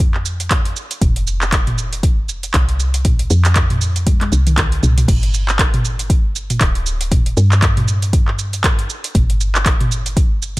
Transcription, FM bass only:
0.00 0.73 F2 loud
1.01 2.51 F1 loud
2.54 3.27 C2 medium
3.30 4.31 F2 loud
4.32 4.80 C2 loud
4.83 5.05 C2 loud
5.08 6.58 G1 loud
6.61 7.34 D1 medium
7.37 8.87 G2 loud
9.15 10.60 G1 loud

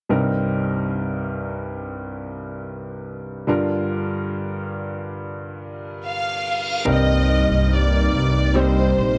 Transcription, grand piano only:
0.09 3.44 C2 soft
0.09 3.45 G2 soft
0.09 3.44 G3 soft
0.09 3.44 C4 soft
0.09 3.44 D#4 soft
0.09 3.45 A#4 medium
3.47 6.82 G2 soft
3.47 6.82 D3 soft
3.47 6.82 G3 soft
3.47 6.82 D4 soft
3.47 6.83 F4 soft
3.47 6.83 A#4 medium
6.85 8.09 G2 soft
6.85 8.46 G3 medium
6.85 8.46 C4 soft
6.85 8.47 D#4 soft
6.85 8.47 A#4 medium
8.54 9.18 G3 medium
8.54 9.18 C4 soft
8.54 9.18 D#4 soft
8.54 9.18 G4 medium

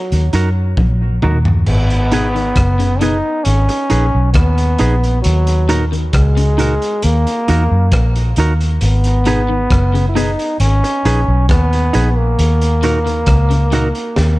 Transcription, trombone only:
0.00 0.29 F#3 medium
1.68 3.02 B3 loud
3.00 3.45 D#4 loud
3.44 4.33 C#4 loud
4.34 5.19 B3 loud
5.22 5.82 F#3 medium
6.13 7.05 G#3 medium
7.04 8.37 A#3 loud
8.82 10.05 B3 loud
10.09 10.17 E4 medium
10.16 10.60 D#4 loud
10.61 11.45 C#4 loud
11.49 12.19 B3 loud
12.17 14.39 A#3 medium

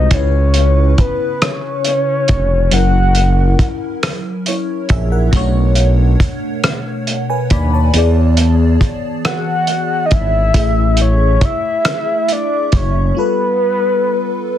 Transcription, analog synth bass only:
0.12 0.94 C#2 loud
0.99 1.07 F1 soft
2.30 2.69 F1 medium
2.72 3.55 F#1 loud
3.60 3.68 A#1 soft
4.90 5.29 A#1 medium
5.33 6.16 B1 loud
6.21 6.29 D#2 soft
7.51 7.90 D#2 medium
7.95 8.77 E2 loud
8.81 8.90 G#1 soft
10.12 10.51 G#1 medium
10.55 11.38 A1 loud
11.42 11.50 F#1 soft
12.73 13.12 F#1 medium

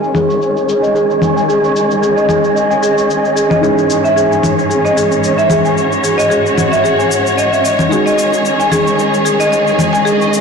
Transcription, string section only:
0.00 3.59 D#3 medium
0.00 3.59 G#3 medium
0.00 10.41 C#4 medium
0.00 5.73 G#4 medium
0.00 1.46 C#5 medium
1.48 3.60 D#5 medium
3.63 7.88 G#2 medium
3.63 7.88 E3 medium
3.63 10.02 C#5 medium
5.77 7.89 F#4 medium
7.92 10.41 D#3 medium
7.92 10.41 G#3 medium
7.92 10.41 G#4 medium
10.06 10.41 D#5 medium

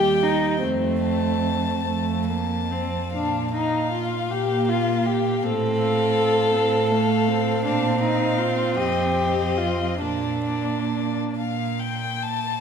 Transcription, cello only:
0.00 0.49 D#2 medium
0.63 1.70 F2 medium
1.85 2.99 F2 soft
3.14 4.18 A#2 medium
4.31 5.30 A#2 medium
5.43 6.41 A2 medium
6.54 7.52 A2 medium
7.65 8.63 A#2 medium
8.76 9.86 F2 medium
10.01 11.19 A#2 medium
11.35 12.50 A#2 soft

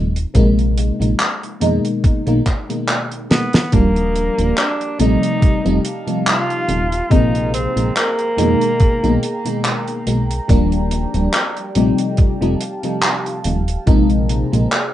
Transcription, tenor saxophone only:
3.31 3.75 B3 medium
3.73 4.57 A#3 medium
4.57 5.01 D4 loud
5.00 5.84 D#4 loud
6.27 7.13 F4 loud
7.12 7.54 D#4 loud
7.54 7.93 C4 medium
7.96 9.61 A#3 medium

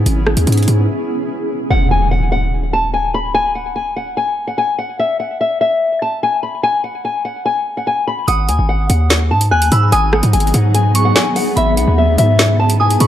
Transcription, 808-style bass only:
0.06 0.36 G#1 loud
0.37 0.47 D#2 loud
0.47 0.67 G#2 loud
0.68 0.87 G#2 loud
8.28 8.50 G#1 loud
8.48 8.58 D#2 loud
8.59 8.88 G#1 loud
8.90 9.32 D#2 loud
9.31 9.53 G#2 loud
9.51 9.71 D#2 loud
9.72 9.91 G#2 loud
9.92 10.22 G#1 loud
10.23 10.33 G#2 loud
10.33 10.53 G#1 loud
10.54 11.13 G#2 loud
11.57 11.79 G#1 loud
11.77 11.87 B1 loud
11.88 12.17 D#2 loud
12.18 12.97 G#2 loud
13.01 13.07 G#2 loud

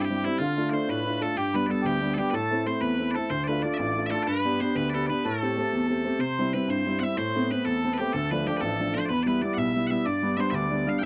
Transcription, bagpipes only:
0.01 0.15 G4 medium
0.01 0.05 A4 medium
0.15 0.24 G4 medium
0.24 0.38 E4 medium
0.38 0.70 F4 medium
0.70 0.90 C5 medium
0.70 0.73 D5 medium
0.90 1.22 B4 medium
1.22 1.37 A4 medium
1.37 1.55 G4 medium
1.55 1.67 B4 medium
1.67 1.86 A4 medium
1.67 1.70 D5 medium
1.86 2.14 G4 loud
2.14 2.18 A4 medium
2.18 2.30 G4 medium
2.30 2.35 B4 medium
2.35 2.67 A4 medium
2.67 2.81 C5 medium
2.81 3.11 B4 medium
3.11 3.30 A4 medium
3.11 3.15 D5 medium
3.30 3.44 C5 loud
3.44 3.63 B4 medium
3.44 3.48 D5 medium
3.63 3.74 D5 medium
3.74 4.06 D5 loud
3.74 3.77 E5 loud
4.06 4.11 E5 medium
4.11 4.23 A4 medium
4.23 4.27 D5 loud
4.27 4.61 B4 loud
4.61 4.76 C5 medium
4.76 4.90 B4 loud
4.90 4.94 D5 medium
4.94 5.06 A4 medium
5.06 5.26 B4 medium
5.06 5.10 D5 medium
5.26 6.20 A4 medium
6.20 6.53 C5 medium
6.53 6.70 B4 medium
6.70 6.99 C5 medium
6.99 7.18 E5 medium
6.99 7.03 F#5 medium
7.18 7.51 C5 loud
7.51 7.65 B4 medium
7.65 7.93 A4 medium
7.93 7.98 B4 medium
7.98 8.13 G4 medium
8.13 8.31 A4 medium
8.31 8.47 B4 medium
8.47 8.57 G4 medium
8.57 8.94 A4 medium
8.57 8.60 B4 medium
8.94 9.05 C5 medium
9.05 9.23 B4 medium
9.05 9.09 D5 medium
9.23 9.27 D5 medium
9.27 9.42 B4 medium
9.42 9.54 D5 medium
9.54 9.58 F#5 medium
9.58 9.87 E5 medium
9.87 10.06 E5 medium
9.87 9.90 F#5 medium
10.06 10.37 D5 loud
10.37 10.50 C5 medium
10.37 10.40 E5 medium
10.50 10.55 E5 loud
10.55 10.89 D5 loud
10.89 10.99 F5 medium
10.99 11.03 G5 loud

